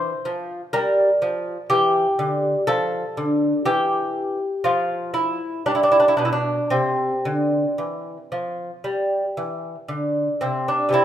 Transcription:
0.00 0.12 E3 medium
0.00 0.70 C5 medium
0.25 0.60 F3 medium
0.73 1.08 G3 medium
0.73 1.66 A#4 medium
1.22 1.56 F3 medium
1.70 2.05 E3 medium
1.70 2.64 G4 medium
2.19 2.54 D3 medium
2.67 3.03 F3 medium
2.67 3.61 A4 medium
3.17 3.52 D3 medium
3.65 4.37 E3 medium
3.65 4.60 G4 medium
4.64 5.38 F3 medium
4.64 5.13 F4 medium
5.14 5.64 E4 medium
5.66 6.04 G3 medium
5.66 5.74 D4 medium
5.75 5.83 E4 medium
5.83 5.91 D4 medium
5.92 5.99 E4 medium
6.00 6.08 D4 medium
6.08 6.16 E4 medium
6.17 6.57 B2 medium
6.17 6.25 D4 medium
6.25 6.32 E4 medium
6.33 6.70 D4 medium
6.70 7.10 C3 medium
6.70 9.84 C4 medium
7.25 7.64 D3 medium
7.78 8.17 E3 soft
8.32 8.70 F3 medium
8.84 9.22 G3 soft
9.37 9.75 E3 soft
9.88 10.27 D3 medium
10.41 10.80 C3 soft
10.41 10.68 C4 medium
10.68 10.93 D4 medium
10.89 11.05 C3 soft
10.89 11.05 G3 soft
10.89 11.05 C4 soft
10.94 11.05 E4 medium

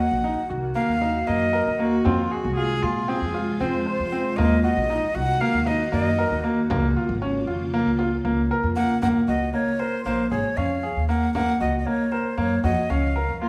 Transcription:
0.00 2.03 D#3 medium
0.00 2.03 A#3 medium
0.00 0.13 F#4 medium
0.00 2.03 F#4 medium
0.00 0.50 F#5 medium
0.11 0.34 A#1 medium
0.24 0.39 D#4 medium
0.50 0.73 C2 medium
0.50 0.65 F#4 medium
0.75 0.91 A#3 medium
0.75 1.29 F5 medium
0.89 1.23 D#2 medium
1.01 1.17 D#4 medium
1.01 frame drum soft
1.27 1.62 F#2 medium
1.27 1.43 A#3 medium
1.27 1.86 D#5 medium
1.53 1.68 A#4 medium
1.67 2.01 D#2 medium
1.79 1.95 A#3 medium
1.79 2.07 F#4 medium
2.05 2.28 F2 medium
2.05 4.36 C3 medium
2.05 4.36 G#3 medium
2.05 2.20 C4 medium
2.05 4.36 F4 medium
2.05 2.33 F4 medium
2.05 frame drum medium
2.31 2.56 F#4 medium
2.31 2.46 G#4 medium
2.44 2.78 C2 medium
2.56 2.72 F4 medium
2.56 2.84 G#4 loud
2.83 3.17 A#2 medium
2.83 3.10 F4 medium
2.83 2.98 G#4 medium
3.08 3.23 C4 medium
3.08 3.47 G#4 medium
3.22 3.56 F2 medium
3.34 3.50 F4 medium
3.34 frame drum soft
3.60 3.83 F2 loud
3.60 3.76 C4 medium
3.60 4.38 C5 medium
3.86 4.01 C5 medium
4.00 4.22 F2 medium
4.12 4.27 C4 medium
4.36 4.72 D#2 medium
4.36 6.68 D#3 medium
4.36 4.53 A#3 medium
4.36 8.99 A#3 medium
4.36 6.68 F#4 medium
4.36 4.63 D#5 medium
4.36 frame drum medium
4.63 4.79 F#4 medium
4.63 5.16 D#5 medium
4.77 4.99 A#1 medium
4.90 5.05 D#4 medium
5.15 5.38 C2 medium
5.15 5.30 F#4 medium
5.15 5.42 F#5 loud
5.41 5.56 A#3 medium
5.41 5.69 F5 loud
5.54 5.88 D#2 medium
5.66 5.81 D#4 medium
5.66 5.91 D#5 medium
5.66 frame drum soft
5.92 6.27 F#2 medium
5.92 6.07 A#3 medium
5.92 6.46 D#5 medium
6.18 6.34 A#4 medium
6.31 6.65 D#2 medium
6.44 6.59 A#3 medium
6.70 6.93 C#2 loud
6.70 9.00 C#3 medium
6.70 6.85 A#3 medium
6.70 9.00 F4 medium
6.70 frame drum medium
6.97 7.11 F4 medium
7.09 7.43 G#1 medium
7.22 7.37 C#4 medium
7.47 7.81 F2 medium
7.47 7.62 F4 medium
7.73 7.89 A#3 medium
7.73 frame drum soft
7.86 8.20 C#2 medium
7.99 8.14 F4 medium
7.99 frame drum medium
8.24 8.47 C#2 medium
8.24 8.40 A#3 medium
8.24 frame drum soft
8.51 8.66 A#4 medium
8.51 frame drum soft
8.63 8.86 F2 medium
8.76 8.92 A#3 medium
8.76 9.00 F#5 medium
9.02 9.14 D#2 medium
9.02 9.17 A#3 medium
9.02 9.08 F#5 medium
9.02 frame drum medium
9.28 9.50 C#2 medium
9.28 9.43 F#4 medium
9.28 9.52 D#5 medium
9.54 9.69 A#3 medium
9.54 9.81 C#5 medium
9.54 frame drum soft
9.79 9.95 A#4 medium
9.79 10.04 C5 medium
10.05 10.28 A#1 medium
10.05 10.21 A#3 medium
10.05 10.29 C5 medium
10.31 10.43 G#1 medium
10.31 10.46 G#4 medium
10.31 10.59 C#5 medium
10.31 frame drum soft
10.57 10.91 F2 medium
10.57 10.72 C#4 medium
10.57 11.08 F5 medium
10.83 10.98 G#4 medium
10.96 11.30 D#2 medium
11.08 11.24 A#3 medium
11.08 11.32 F#5 medium
11.34 11.46 D#2 medium
11.34 11.50 A#3 medium
11.34 11.58 F#5 medium
11.34 frame drum medium
11.60 11.83 C#2 medium
11.60 11.76 F#4 medium
11.60 11.78 D#5 medium
11.79 11.87 D#5 medium
11.86 12.02 A#3 medium
11.86 12.13 C#5 medium
11.86 frame drum soft
12.12 12.27 A#4 medium
12.12 12.39 C5 medium
12.38 12.60 F#2 medium
12.38 12.53 A#3 medium
12.38 12.63 C#5 medium
12.64 12.75 F2 loud
12.64 12.79 F#4 medium
12.64 12.92 D#5 medium
12.64 frame drum soft
12.90 13.24 C#2 medium
12.90 13.05 C#4 medium
12.90 13.48 F5 medium
13.16 13.31 A#4 medium
13.29 13.49 F2 medium
13.41 13.49 A#3 medium
13.41 13.49 F4 medium

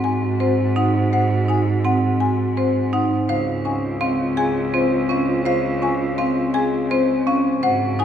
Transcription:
0.00 3.18 G#2 medium
0.00 0.28 G#5 medium
0.05 0.17 F#4 medium
0.23 0.35 F#4 medium
0.40 0.64 C4 medium
0.40 0.54 F#4 medium
0.40 0.64 C5 medium
0.60 0.72 F#4 medium
0.76 1.00 D#4 medium
0.76 0.90 F#4 medium
0.76 1.00 F#5 medium
0.94 1.07 F#4 medium
1.13 1.26 F#4 medium
1.13 1.36 C5 medium
1.13 1.36 F#5 medium
1.30 1.43 F#4 medium
1.48 1.72 D#4 medium
1.48 1.61 F#4 medium
1.48 1.72 G#5 medium
1.66 1.79 F#4 medium
1.84 2.08 C4 medium
1.84 1.98 F#4 medium
1.84 2.08 F#5 medium
2.02 2.15 F#4 medium
2.20 2.33 F#4 soft
2.20 2.44 G#5 medium
2.38 2.51 F#4 medium
2.56 2.81 C4 medium
2.56 2.69 F#4 medium
2.56 2.81 C5 medium
2.75 2.88 F#4 soft
2.93 3.17 D#4 medium
2.93 3.05 F#4 soft
2.93 3.17 F#5 medium
3.29 7.52 C#2 medium
3.29 3.42 F4 soft
3.29 3.53 C5 medium
3.29 3.53 F5 medium
3.47 3.60 F4 soft
3.65 3.89 C#4 medium
3.65 3.78 F4 soft
3.65 3.89 G#5 medium
3.83 3.96 F4 medium
4.01 4.25 C4 medium
4.01 4.15 F4 medium
4.01 4.25 F5 medium
4.20 4.33 F4 medium
4.37 4.50 F4 medium
4.37 4.61 G#4 medium
4.37 4.61 G#5 medium
4.56 4.68 F4 medium
4.74 4.97 C4 medium
4.74 4.87 F4 medium
4.74 4.97 C5 medium
4.92 5.05 F4 medium
5.09 5.33 C#4 medium
5.09 5.23 F4 medium
5.09 5.34 F5 medium
5.29 5.41 F4 medium
5.45 5.59 F4 medium
5.45 5.69 C5 medium
5.45 5.70 F5 medium
5.64 5.77 F4 medium
5.82 6.06 C#4 medium
5.82 5.95 F4 medium
5.82 6.06 G#5 medium
6.00 6.13 F4 medium
6.18 6.42 C4 medium
6.18 6.31 F4 medium
6.18 6.42 F5 medium
6.36 6.49 F4 medium
6.54 6.68 F4 medium
6.54 6.78 G#4 medium
6.54 6.78 G#5 medium
6.74 6.86 F4 medium
6.91 7.14 C4 medium
6.91 7.04 F4 medium
6.91 7.14 C5 medium
7.09 7.22 F4 soft
7.27 7.50 C#4 medium
7.27 7.40 F4 soft
7.27 7.51 F5 medium
7.63 8.05 G#2 medium
7.63 7.76 F#4 soft
7.63 7.87 C5 medium
7.63 7.87 F#5 medium
7.82 7.94 F#4 soft
7.99 8.05 D#4 medium
7.99 8.05 F#4 medium
7.99 8.05 G#5 medium

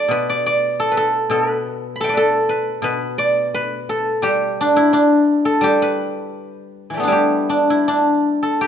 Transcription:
0.00 1.79 G4 medium
0.00 0.79 A4 medium
0.00 0.29 D5 medium
0.08 1.28 B2 soft
0.08 0.91 B4 medium
0.29 0.46 D5 medium
0.46 2.08 D5 medium
0.80 0.97 A4 medium
0.92 1.30 B4 soft
0.97 1.31 A4 medium
1.30 2.81 B2 soft
1.30 1.51 A4 medium
1.51 2.13 B4 medium
1.96 3.30 B5 soft
2.01 2.17 A4 medium
2.01 3.59 G5 soft
2.01 3.46 A5 soft
2.05 3.18 D5 soft
2.05 3.77 E5 soft
2.13 2.49 B4 soft
2.17 3.89 A4 medium
2.49 2.84 B4 medium
2.82 4.92 B2 soft
2.82 3.54 B4 medium
3.18 5.03 D5 medium
3.54 5.59 B4 medium
3.89 5.45 A4 medium
4.22 5.60 G3 medium
4.22 5.63 G4 medium
4.61 4.93 D4 medium
4.76 7.08 E4 medium
4.93 7.03 D4 medium
5.45 7.65 A4 medium
5.61 6.92 G3 soft
5.61 7.12 G4 medium
5.82 7.86 B4 medium
6.90 7.09 E3 soft
6.90 7.07 G3 soft
6.97 8.67 A3 soft
6.97 8.67 B3 soft
7.03 7.49 D4 soft
7.07 8.67 G3 soft
7.07 7.70 E4 soft
7.12 8.61 G4 medium
7.49 7.87 D4 medium
7.70 8.67 E4 soft
7.88 8.67 D4 medium
8.43 8.67 A4 medium
8.61 8.67 G4 medium

